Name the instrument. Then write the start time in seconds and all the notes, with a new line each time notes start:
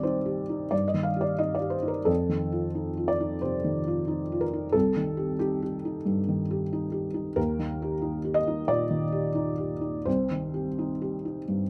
felt piano
Already playing: C2 D#3 G4 D5
0.03 D#4 C5
0.26 G4
0.49 D#4
0.71 G2 D5
0.88 D#5
0.94 D#3
1.03 F5
1.16 G4
1.21 D5
1.38 D#4 D#5
1.55 D5
1.60 G4
1.70 C5
1.82 D#4
1.88 A#4
2.05 F2 A4
2.29 D#3
2.52 F4
2.75 D#4
2.97 F4
3.08 D5
3.20 D#4
3.42 C3 C5
3.64 D#3
3.88 F4
4.08 D#4
4.32 F4
4.41 A#4
4.53 D#4
4.72 C2 A4
4.97 D#3
5.17 G4
5.39 D#4 G4
5.62 G4
5.85 D#4
6.05 G2
6.28 D#3
6.51 G4
6.73 D#4
6.92 G4
7.14 D#4
7.36 D#2 A#4
7.59 D#3
7.82 G4
8.02 D#4
8.25 G4
8.34 D#5
8.47 D#4
8.68 A#2 D5
8.90 D#3
9.12 G4
9.35 D#4
9.58 G4
9.81 D#4
10.05 C2 C5
10.31 D#3
10.54 G4
10.79 D#4
11.02 G4
11.25 D#4
11.48 G2